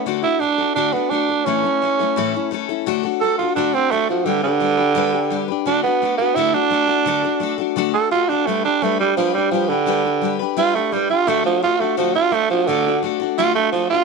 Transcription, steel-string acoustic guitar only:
\new Staff \with { instrumentName = "Steel-string acoustic guitar" } { \time 4/4 \key d \major \tempo 4 = 171 <d a d' fis' a'>8 <d' fis' a'>8 <a d' fis' a'>8 <d' fis' a'>8 <d a d' fis' a'>8 <d' fis' a'>8 <a d' fis' a'>8 <d' fis' a'>8 | <a, e a cis' e' a'>8 <a cis' e' a'>8 <a cis' e' a'>8 <a cis' e' a'>8 <a, e a cis' e' a'>8 <a cis' e' a'>8 <a cis' e' a'>8 <a cis' e' a'>8 | <d a d' fis' a'>8 <d' fis' a'>8 <a d' fis' a'>8 <d' fis' a'>8 <d a d' fis' a'>8 <d' fis' a'>8 <a d' fis' a'>8 <d' fis' a'>8 | <g d' g' b'>8 <d' g' b'>8 <g d' g' b'>8 <d' g' b'>8 <g d' g' b'>8 <d' g' b'>8 <g d' g' b'>8 <d' g' b'>8 |
<d a d' fis' a'>8 <d' fis' a'>8 <a d' fis' a'>8 <d' fis' a'>8 <d a d' fis' a'>8 <d' fis' a'>8 <a d' fis' a'>8 <d' fis' a'>8 | <d a d' fis' a'>8 <d' fis' a'>8 <a d' fis' a'>8 <d' fis' a'>8 <d a d' fis' a'>8 <d' fis' a'>8 <a d' fis' a'>8 <d' fis' a'>8 | <g d' g' b'>8 <d' g' b'>8 <g d' g' b'>8 <d' g' b'>8 <g d' g' b'>8 <d' g' b'>8 <g d' g' b'>8 <d' g' b'>8 | <g d' g' b'>8 <d' g' b'>8 <g d' g' b'>8 <d' g' b'>8 <g d' g' b'>8 <d' g' b'>8 <g d' g' b'>8 <d' g' b'>8 |
<d a d' fis' a'>8 <d' fis' a'>8 <a d' fis' a'>8 <d' fis' a'>8 <d a d' fis' a'>8 <d' fis' a'>8 <a d' fis' a'>8 <d' fis' a'>8 | <d a d' fis' a'>8 <d' fis' a'>8 <a d' fis' a'>8 <d' fis' a'>8 <d a d' fis' a'>8 <d' fis' a'>8 <a d' fis' a'>8 <d' fis' a'>8 | }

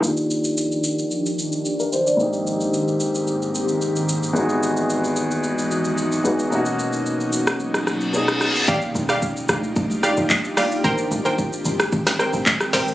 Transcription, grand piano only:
\new Staff \with { instrumentName = "Grand piano" } { \time 4/4 \key ees \major \tempo 4 = 111 << { r2. r16 bes'16 c''16 d''16~ | d''16 r2. r8. | r1 | r1 |
r1 | r1 | } \\ { <ees bes d' f' g'>1 | <aes, bes c' ees' g'>1 | <e, gis b dis' fis'>2.~ <e, gis b dis' fis'>8 <e, gis b dis' fis'>8 | <b, ais cis' dis' fis'>2. <b, ais cis' dis' aes'>4 |
r1 | r1 | } >> }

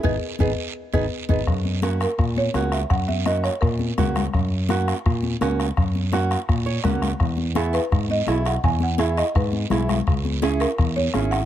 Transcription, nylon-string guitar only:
\new Staff \with { instrumentName = "Nylon-string guitar" } { \time 4/4 \key fis \mixolydian \tempo 4 = 168 << { <b dis' gis'>8 r8 <b dis' gis'>8 r4 <b dis' gis'>8 r8 <b dis' gis'>8 | r1 | r1 | r1 |
r2 r8 cis''8 fis''4 | r1 | r1 | r1 | } \\ { r1 | r4 <ais cis' fis'>8 r4. <ais cis' fis'>8 r8 | r4 <ais cis' fis'>8 r4. <ais cis' fis'>8 r8 | r4 <ais cis' fis'>8 r4. <ais cis' fis'>8 r8 |
r4 <ais cis' fis'>8 r4. <ais cis' fis'>8 r8 | r4 <b e' gis'>8 r4. <b e' gis'>8 r8 | r4 <b e' gis'>8 r4. <b e' gis'>8 r8 | r4 <cis' e' gis'>8 r4. <cis' e' gis'>8 r8 | } >> }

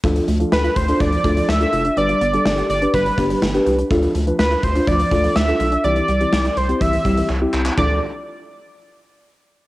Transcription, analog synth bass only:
\new Staff \with { instrumentName = "Analog synth bass" } { \clef bass \time 4/4 \key d \dorian \tempo 4 = 124 d,8 d,8 d,8 d,8 d,8 d,8 d,8 f,,8 | g,,8 g,,8 g,,8 g,,8 g,,8 g,,8 g,,8 c,8 | d,8 d,8 d,8 d,8 d,8 d,8 d,8 b,,8 | c,8 c,8 c,8 c,8 c,8 c,8 c,8 c,8 |
d,8 r2. r8 | }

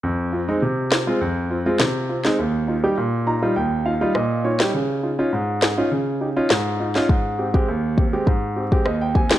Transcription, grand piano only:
<<
  \new Staff \with { instrumentName = "Grand piano" } { \time 4/4 \key f \minor \tempo 4 = 102 << { r1 | r4. bes''8 g''8 f''8 ees''8 des''8 | r1 | r2. ees''16 g''16 aes''8 | } \\ { r8 <c' f'>16 <aes c' ees'>16 r8 <c' f'>16 <aes c' f'>16 r8 <c' f'>16 <aes c' f'>16 r8 <c' f'>16 <aes c' ees'>16 | r8 <ees' f'>16 <g ees' g'>16 r8 <ees' f'>16 <g ees' f'>16 r8 <ees' f'>16 <g ees' f'>16 r8 <ees' f'>16 <g ees' g'>16 | r8 <ees' f'>16 <des' ees' f'>16 r8 <ees' aes'>16 <des' ees' f'>16 r8 <ees' g'>16 <des' ees' f'>16 r8 <ees' f'>16 <des' ees' f'>16 | r8 <c' g'>16 <aes c' g'>16 r8 <c' g'>16 <aes c' g'>16 r8 <c' g'>16 <aes c' g'>16 r8 <c' g'>16 <aes c' g'>16 | } >> }
  \new Staff \with { instrumentName = "Grand piano" } { \clef bass \time 4/4 \key f \minor f,4 c4 f,4 c4 | ees,4 bes,4 ees,4 bes,4 | des4 aes,4 des4 aes,4 | aes,4 ees,4 aes,4 ees,4 | }
>>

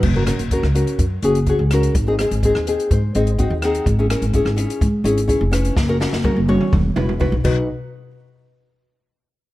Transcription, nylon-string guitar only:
\new Staff \with { instrumentName = "Nylon-string guitar" } { \time 4/4 \key fis \mixolydian \tempo 4 = 125 << { r1 | r4. gis'8 bis'8 dis''8 dis''8 fis''8 | r1 | r1 |
r1 | } \\ { r16 <cis' fis' ais'>16 <cis' fis' ais'>16 r16 <cis' fis' ais'>16 r16 <cis' fis' ais'>8 r8 <cis' fis' gis'>16 r16 <cis' fis' gis'>16 r16 <cis' fis' ais'>8 | r16 <bis dis' gis'>16 <bis dis' gis'>16 r16 <bis dis' gis'>16 r16 <bis dis' gis'>8 r8 <bis dis' gis'>16 r16 <bis dis' fis'>16 r16 <bis dis' gis'>8 | r16 <cis' e' gis'>16 <cis' e' ais'>16 r16 <cis' e' gis'>16 r16 <cis' e' gis'>8 r8 <cis' e' gis'>16 r16 <cis' e' gis'>16 r16 <cis' e' b'>8 | r16 <cis' fis' ais'>16 <cis' fis' ais'>16 r16 <cis' fis' ais'>16 r16 <cis' fis' cis''>8 r8 <e' fis' b'>16 r16 <e' fis' b'>16 r16 <dis' fis' b'>8 |
r1 | } >> }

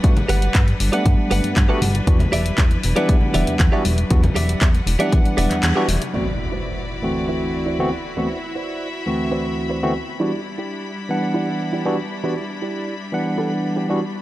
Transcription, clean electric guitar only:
\new Staff \with { instrumentName = "Clean electric guitar" } { \time 4/4 \key e \minor \tempo 4 = 118 r8 <g' b' fis''>8 r8. <g' b' fis''>16 r8 <g' b' fis''>8 r16 <g' b' fis''>8 r16 | r8 <g' d'' e''>8 r8. <g' d'' e''>16 r8 <g' d'' e''>8 r16 <g' d'' e''>8 r16 | r8 <g' d'' e''>8 r8. <g' d'' e''>16 r8 <g' d'' e''>8 r16 <g' d'' e''>8 r16 | <e' fis' b' c'' d''>8 r16 <e' fis' b' c'' d''>8. r8. <e' fis' b' c'' e''>16 r8 <e' fis' b' c'' d''>8 r8 |
<e' fis' b' c'' d''>8 r16 <e' fis' b' c'' d''>8. r8. <e' fis' b' c'' d''>16 r8 <e' fis' b' c'' d''>8 r8 | <e' g' d''>8 r16 <e' g' d''>8. r8. <e' g' d''>16 r8 <e' g' d''>8 r8 | <e' g' d''>8 r16 <e' g' d''>8. r8. <e' g' a'>16 r8 <e' g' d''>8 r8 | }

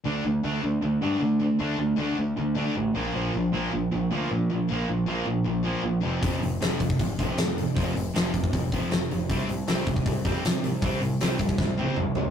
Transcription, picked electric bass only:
\new Staff \with { instrumentName = "Picked electric bass" } { \clef bass \time 4/4 \key d \minor \tempo 4 = 156 d,8 d,8 d,8 d,8 d,8 g,8 d4 | d,8 d,8 d,8 d,8 d,4 a,,8 bes,,8 | bes,,8 bes,,8 bes,,8 bes,,8 bes,,8 d,8 bes,4 | bes,,8 bes,,8 bes,,8 bes,,8 bes,,4 bes,,8 f,,8 |
f,,8 f,,8 f,,8 f,,8 f,,8 bes,,8 f,4 | f,,8 f,,8 f,,8 f,,8 f,,4 f,,8 f,,8 | c,8 c,8 c,8 c,8 c,8 f,8 c4 | c,8 c,8 c,8 c,8 c,4 c,8 c,8 | }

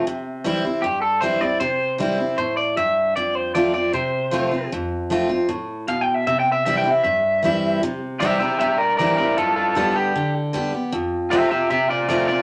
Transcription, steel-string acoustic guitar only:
\new Staff \with { instrumentName = "Steel-string acoustic guitar" } { \time 4/4 \key c \major \tempo 4 = 154 << { r4 <e g c' e'>8 <c' e'>8 r4 <e g c' e'>8 <c' e'>8 | r4 <e g c' e'>8 <c' e'>8 r2 | r4 <f a c' f'>8 <c' f'>8 r4 <f a c' f'>8 <c' f'>8 | r4 <f a c' f'>8 <c' f'>8 r2 |
r4 <e g c' e'>8 <c' e'>8 r4 <e g c' e'>4 | r4 <e g c' e'>8 <c' e'>8 r4 <e g c' e'>8 <c' e'>8 | r4 <d g b g'>4 r4 <d g b g'>8 <b g'>8 | r4 <f a c' f'>8 <c' f'>8 r4 <f a c' f'>8 <c' f'>8 | } \\ { c2 g,2 | c2 a,4 g,4 | f,2 c2 | f,2 a,4 b,4 |
c2 g,2 | c2 g,2 | g,2 d2 | f,2 c2 | } >> }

